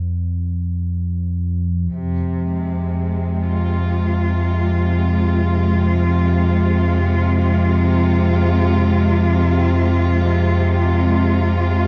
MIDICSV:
0, 0, Header, 1, 4, 480
1, 0, Start_track
1, 0, Tempo, 500000
1, 11399, End_track
2, 0, Start_track
2, 0, Title_t, "Cello section"
2, 0, Program_c, 0, 48
2, 1836, Note_on_c, 0, 48, 66
2, 2280, Note_on_c, 0, 56, 59
2, 3281, Note_on_c, 0, 65, 70
2, 11399, Note_off_c, 0, 48, 0
2, 11399, Note_off_c, 0, 56, 0
2, 11399, Note_off_c, 0, 65, 0
2, 11399, End_track
3, 0, Start_track
3, 0, Title_t, "Synth drone"
3, 0, Program_c, 1, 95
3, 0, Note_on_c, 1, 41, 70
3, 0, Note_on_c, 1, 53, 70
3, 1816, Note_off_c, 1, 41, 0
3, 1824, Note_off_c, 1, 53, 0
3, 1827, Note_on_c, 1, 41, 83
3, 1835, Note_on_c, 1, 53, 75
3, 11399, Note_off_c, 1, 41, 0
3, 11399, Note_off_c, 1, 53, 0
3, 11399, End_track
4, 0, Start_track
4, 0, Title_t, "Grand piano"
4, 0, Program_c, 2, 0
4, 2037, Control_c, 2, 64, 127
4, 9848, Note_on_c, 2, 41, 47
4, 11399, Note_off_c, 2, 41, 0
4, 11399, End_track
0, 0, End_of_file